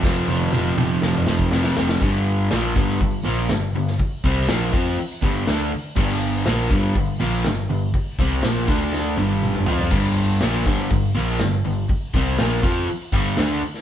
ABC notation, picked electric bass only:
X:1
M:4/4
L:1/8
Q:1/4=121
K:Gm
V:1 name="Picked electric bass" clef=bass
F,,, F,,, F,,, F,,, F,,, F,,, F,,, F,,, | G,,,2 B,,, G,,, G,,, B,,, G,,, G,,, | z C,, B,,, F,, z G,,, D,, z | G,,,2 B,,, G,,, G,,, B,,, G,,, G,,, |
z C,, B,,, D,,2 G,,,2 F,, | G,,,2 B,,, G,,, G,,, B,,, G,,, G,,, | z C,, B,,, F,, z G,,, D,, z |]